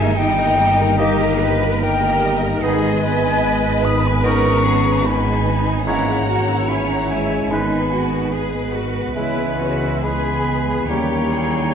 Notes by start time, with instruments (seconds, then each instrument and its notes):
Already playing: double bass section G1, harp G2 A#3 A#4, trombone section D#3 A#3, french horn section G#3, viola section A#3 G4, cello section D#4, violin section A#4 E5, flute G#5
0.16 viola section G3 D#4, french horn section G3, violin section G4 D#5, harp D#5, flute G5
0.38 viola section A#3 G4, violin section A#4
0.45 harp A#4
0.59 viola section G3 D#4, violin section G4
0.72 harp D#4
0.79 viola section A#3 G4, violin section A#4
0.98 harp G2, french horn section D#3, viola section G3 D#4, bassoon A#3, clarinet D#4, cello section G4, violin section G4 A#4, oboe D#5, flute D#5
1.20 viola section A#3 G4, violin section A#4
1.27 harp A#3
1.40 viola section G3 D#4, violin section G4, cello section B4
1.55 harp A#4
1.61 viola section A#3 G4, violin section A#4
1.81 french horn section G3, viola section G3 D#4, violin section G4 D#5, cello section A#4, harp D#5, flute G5
2.01 viola section A#3 G4, violin section A#4
2.11 harp A#4
2.21 viola section G3 D#4, violin section G4
2.37 harp D#4
2.42 viola section A#3 G4, violin section A#4
2.61 double bass section G#1, harp G#2, viola section D#3 G#3, trombone section D#3 B3, french horn section G#3, bassoon B3, clarinet D#4, cello section G#4, violin section B4 D#5, oboe D#5, flute G#5
2.83 viola section G#3
2.92 harp B3
3.02 viola section B3, cello section B4
3.18 harp G#4
3.23 viola section D#4
3.42 viola section B3, harp D#5
3.62 viola section G#3
3.72 harp B4
3.83 viola section D#3, french horn section D#4, violin section B5, flute D#6
3.97 harp G#4
4.02 viola section G#3, french horn section B3, violin section G#5
4.07 flute B5
4.23 harp D#3, viola section B3, bassoon B3, french horn section C#4, clarinet D#4, cello section A#4, oboe D#5, violin section A#5, flute C#6
4.43 viola section D#4
4.52 harp B3
4.63 viola section B3, cello section G#4
4.79 harp G#4
4.84 viola section G#3
5.05 viola section D#3, french horn section B3, cello section D#4, harp D#5, violin section G#5, flute B5
5.25 viola section G#3
5.32 harp B4
5.45 viola section B3
5.59 harp G#4
5.66 viola section D#4
5.85 harp G#2, trombone section E3 C#4, viola section E3, bassoon G#3, french horn section A#3, cello section E4, clarinet E4, violin section C#5 F#5, oboe C#5, flute A#5
6.08 viola section G#3
6.13 harp C#4
6.27 viola section C#4, cello section F#4
6.40 harp G#4
6.49 viola section E4
6.68 french horn section B3, viola section C#4, cello section E4, harp E5, violin section G#5, flute B5
6.88 viola section G#3, french horn section A#3, violin section F#5, flute A#5
6.95 harp C#5
7.08 viola section E3, french horn section G#3, violin section E5, flute G#5
7.22 harp G#4
7.29 viola section G#3
7.49 double bass section G#1, harp G#2, trombone section D#3 B3, viola section D#3 G#3, bassoon G#3, french horn section B3, cello section D#4, clarinet D#4, violin section B4 G#5, oboe B4, flute B5
7.72 viola section G#3
7.78 harp B3
7.92 viola section B3, cello section F#4
8.06 harp G#4
8.11 viola section D#4
8.33 viola section B3, cello section G#4, harp D#5
8.52 viola section G#3
8.60 harp B4
8.73 viola section D#3, cello section F#4
8.87 harp G#4
8.94 viola section G#3
9.14 double bass section C#2, harp C#3, trombone section E3, french horn section E3, viola section G#3, bassoon G#3, cello section E4, clarinet E4, oboe B4, violin section C#5, flute E5
9.36 viola section B3
9.44 harp B3
9.59 viola section C#4, cello section F#4
9.74 harp G#4
9.83 viola section E4
10.03 bassoon G#3, french horn section B3, viola section C#4, clarinet E4, cello section G#4, oboe B4, harp E5, violin section G#5, flute B5
10.26 viola section B3
10.34 harp B4
10.46 viola section G#3
10.62 harp G#4
10.69 viola section B3
10.87 double bass section D#2, harp D#3, viola section G3, bassoon G3, french horn section A#3, trombone section C#4, clarinet E4, cello section G4, violin section C#5 G5, oboe C#5, flute A#5
11.11 viola section A#3
11.19 harp C#4
11.32 viola section C#4, cello section G#4
11.46 harp G4
11.55 viola section D#4